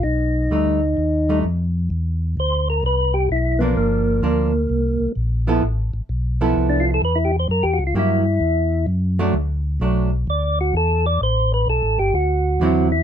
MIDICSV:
0, 0, Header, 1, 4, 480
1, 0, Start_track
1, 0, Key_signature, 1, "minor"
1, 0, Tempo, 465477
1, 44, Time_signature, 4, 2, 24, 8
1, 13438, End_track
2, 0, Start_track
2, 0, Title_t, "Tonewheel organ"
2, 0, Program_c, 0, 16
2, 35, Note_on_c, 0, 63, 71
2, 1438, Note_off_c, 0, 63, 0
2, 2471, Note_on_c, 0, 72, 79
2, 2768, Note_off_c, 0, 72, 0
2, 2781, Note_on_c, 0, 70, 73
2, 2928, Note_off_c, 0, 70, 0
2, 2951, Note_on_c, 0, 71, 84
2, 3236, Note_on_c, 0, 67, 74
2, 3247, Note_off_c, 0, 71, 0
2, 3395, Note_off_c, 0, 67, 0
2, 3422, Note_on_c, 0, 64, 68
2, 3700, Note_on_c, 0, 59, 68
2, 3722, Note_off_c, 0, 64, 0
2, 3866, Note_off_c, 0, 59, 0
2, 3889, Note_on_c, 0, 58, 62
2, 5282, Note_off_c, 0, 58, 0
2, 6903, Note_on_c, 0, 62, 69
2, 7014, Note_on_c, 0, 65, 81
2, 7066, Note_off_c, 0, 62, 0
2, 7123, Note_off_c, 0, 65, 0
2, 7158, Note_on_c, 0, 69, 74
2, 7236, Note_off_c, 0, 69, 0
2, 7266, Note_on_c, 0, 71, 96
2, 7377, Note_on_c, 0, 64, 61
2, 7408, Note_off_c, 0, 71, 0
2, 7473, Note_on_c, 0, 67, 79
2, 7542, Note_off_c, 0, 64, 0
2, 7592, Note_off_c, 0, 67, 0
2, 7625, Note_on_c, 0, 72, 98
2, 7709, Note_off_c, 0, 72, 0
2, 7746, Note_on_c, 0, 70, 76
2, 7869, Note_on_c, 0, 67, 77
2, 7887, Note_off_c, 0, 70, 0
2, 7977, Note_on_c, 0, 66, 79
2, 8028, Note_off_c, 0, 67, 0
2, 8084, Note_off_c, 0, 66, 0
2, 8114, Note_on_c, 0, 65, 73
2, 8193, Note_off_c, 0, 65, 0
2, 8241, Note_on_c, 0, 64, 75
2, 9137, Note_off_c, 0, 64, 0
2, 10619, Note_on_c, 0, 74, 80
2, 10919, Note_off_c, 0, 74, 0
2, 10938, Note_on_c, 0, 66, 71
2, 11084, Note_off_c, 0, 66, 0
2, 11103, Note_on_c, 0, 69, 78
2, 11402, Note_off_c, 0, 69, 0
2, 11409, Note_on_c, 0, 74, 101
2, 11559, Note_off_c, 0, 74, 0
2, 11582, Note_on_c, 0, 72, 91
2, 11882, Note_off_c, 0, 72, 0
2, 11898, Note_on_c, 0, 71, 93
2, 12045, Note_off_c, 0, 71, 0
2, 12060, Note_on_c, 0, 69, 89
2, 12361, Note_off_c, 0, 69, 0
2, 12367, Note_on_c, 0, 67, 81
2, 12520, Note_off_c, 0, 67, 0
2, 12528, Note_on_c, 0, 66, 80
2, 13286, Note_off_c, 0, 66, 0
2, 13323, Note_on_c, 0, 64, 85
2, 13438, Note_off_c, 0, 64, 0
2, 13438, End_track
3, 0, Start_track
3, 0, Title_t, "Hollow-body jazz guitar"
3, 0, Program_c, 1, 26
3, 527, Note_on_c, 1, 55, 46
3, 537, Note_on_c, 1, 57, 50
3, 544, Note_on_c, 1, 63, 54
3, 813, Note_off_c, 1, 55, 0
3, 819, Note_off_c, 1, 57, 0
3, 822, Note_off_c, 1, 63, 0
3, 1332, Note_on_c, 1, 55, 51
3, 1339, Note_on_c, 1, 57, 58
3, 1342, Note_on_c, 1, 63, 58
3, 1472, Note_off_c, 1, 55, 0
3, 1476, Note_off_c, 1, 57, 0
3, 1477, Note_off_c, 1, 63, 0
3, 3717, Note_on_c, 1, 53, 58
3, 3726, Note_on_c, 1, 58, 60
3, 3731, Note_on_c, 1, 62, 58
3, 4327, Note_off_c, 1, 53, 0
3, 4331, Note_off_c, 1, 58, 0
3, 4334, Note_off_c, 1, 62, 0
3, 4361, Note_on_c, 1, 53, 54
3, 4365, Note_on_c, 1, 58, 54
3, 4370, Note_on_c, 1, 62, 63
3, 4649, Note_off_c, 1, 53, 0
3, 4651, Note_off_c, 1, 58, 0
3, 4653, Note_off_c, 1, 62, 0
3, 5644, Note_on_c, 1, 53, 61
3, 5650, Note_on_c, 1, 59, 66
3, 5654, Note_on_c, 1, 64, 63
3, 5663, Note_on_c, 1, 69, 71
3, 5786, Note_off_c, 1, 53, 0
3, 5789, Note_off_c, 1, 59, 0
3, 5791, Note_off_c, 1, 64, 0
3, 5795, Note_off_c, 1, 69, 0
3, 6609, Note_on_c, 1, 53, 60
3, 6612, Note_on_c, 1, 59, 61
3, 6615, Note_on_c, 1, 64, 66
3, 6617, Note_on_c, 1, 69, 72
3, 7211, Note_off_c, 1, 53, 0
3, 7213, Note_off_c, 1, 59, 0
3, 7214, Note_off_c, 1, 64, 0
3, 7215, Note_off_c, 1, 69, 0
3, 8198, Note_on_c, 1, 54, 45
3, 8204, Note_on_c, 1, 58, 46
3, 8209, Note_on_c, 1, 64, 47
3, 8210, Note_on_c, 1, 67, 51
3, 8486, Note_off_c, 1, 54, 0
3, 8488, Note_off_c, 1, 58, 0
3, 8491, Note_off_c, 1, 64, 0
3, 8491, Note_off_c, 1, 67, 0
3, 9480, Note_on_c, 1, 54, 72
3, 9480, Note_on_c, 1, 57, 74
3, 9491, Note_on_c, 1, 62, 81
3, 9623, Note_off_c, 1, 54, 0
3, 9623, Note_off_c, 1, 57, 0
3, 9628, Note_off_c, 1, 62, 0
3, 10119, Note_on_c, 1, 54, 46
3, 10124, Note_on_c, 1, 57, 47
3, 10129, Note_on_c, 1, 62, 57
3, 10406, Note_off_c, 1, 54, 0
3, 10409, Note_off_c, 1, 57, 0
3, 10411, Note_off_c, 1, 62, 0
3, 13003, Note_on_c, 1, 50, 61
3, 13007, Note_on_c, 1, 54, 67
3, 13018, Note_on_c, 1, 64, 67
3, 13022, Note_on_c, 1, 60, 71
3, 13292, Note_off_c, 1, 50, 0
3, 13294, Note_off_c, 1, 54, 0
3, 13299, Note_off_c, 1, 64, 0
3, 13301, Note_off_c, 1, 60, 0
3, 13438, End_track
4, 0, Start_track
4, 0, Title_t, "Tonewheel organ"
4, 0, Program_c, 2, 16
4, 40, Note_on_c, 2, 35, 74
4, 508, Note_off_c, 2, 35, 0
4, 520, Note_on_c, 2, 38, 72
4, 987, Note_off_c, 2, 38, 0
4, 1001, Note_on_c, 2, 39, 72
4, 1468, Note_off_c, 2, 39, 0
4, 1487, Note_on_c, 2, 41, 76
4, 1951, Note_off_c, 2, 41, 0
4, 1961, Note_on_c, 2, 40, 75
4, 2428, Note_off_c, 2, 40, 0
4, 2445, Note_on_c, 2, 38, 78
4, 2910, Note_off_c, 2, 38, 0
4, 2917, Note_on_c, 2, 36, 74
4, 3385, Note_off_c, 2, 36, 0
4, 3402, Note_on_c, 2, 35, 76
4, 3867, Note_off_c, 2, 35, 0
4, 3878, Note_on_c, 2, 31, 79
4, 4345, Note_off_c, 2, 31, 0
4, 4353, Note_on_c, 2, 38, 85
4, 4822, Note_off_c, 2, 38, 0
4, 4840, Note_on_c, 2, 36, 72
4, 5137, Note_off_c, 2, 36, 0
4, 5154, Note_on_c, 2, 36, 38
4, 5236, Note_off_c, 2, 36, 0
4, 5316, Note_on_c, 2, 34, 80
4, 5783, Note_off_c, 2, 34, 0
4, 5799, Note_on_c, 2, 33, 85
4, 6096, Note_off_c, 2, 33, 0
4, 6120, Note_on_c, 2, 33, 37
4, 6200, Note_off_c, 2, 33, 0
4, 6283, Note_on_c, 2, 35, 84
4, 6746, Note_off_c, 2, 35, 0
4, 6761, Note_on_c, 2, 36, 79
4, 7225, Note_off_c, 2, 36, 0
4, 7240, Note_on_c, 2, 40, 79
4, 7704, Note_off_c, 2, 40, 0
4, 7717, Note_on_c, 2, 42, 81
4, 7872, Note_off_c, 2, 42, 0
4, 7875, Note_on_c, 2, 40, 52
4, 8035, Note_on_c, 2, 37, 61
4, 8036, Note_off_c, 2, 40, 0
4, 8185, Note_off_c, 2, 37, 0
4, 8191, Note_on_c, 2, 43, 83
4, 8659, Note_off_c, 2, 43, 0
4, 8669, Note_on_c, 2, 40, 73
4, 9139, Note_off_c, 2, 40, 0
4, 9143, Note_on_c, 2, 42, 84
4, 9615, Note_off_c, 2, 42, 0
4, 9627, Note_on_c, 2, 38, 80
4, 10098, Note_off_c, 2, 38, 0
4, 10104, Note_on_c, 2, 35, 84
4, 10577, Note_off_c, 2, 35, 0
4, 10593, Note_on_c, 2, 38, 73
4, 11062, Note_off_c, 2, 38, 0
4, 11069, Note_on_c, 2, 40, 85
4, 11540, Note_off_c, 2, 40, 0
4, 11553, Note_on_c, 2, 33, 80
4, 12023, Note_off_c, 2, 33, 0
4, 12031, Note_on_c, 2, 35, 88
4, 12191, Note_off_c, 2, 35, 0
4, 12196, Note_on_c, 2, 33, 54
4, 12349, Note_on_c, 2, 31, 67
4, 12358, Note_off_c, 2, 33, 0
4, 12504, Note_off_c, 2, 31, 0
4, 12511, Note_on_c, 2, 38, 84
4, 12983, Note_off_c, 2, 38, 0
4, 12992, Note_on_c, 2, 40, 87
4, 13438, Note_off_c, 2, 40, 0
4, 13438, End_track
0, 0, End_of_file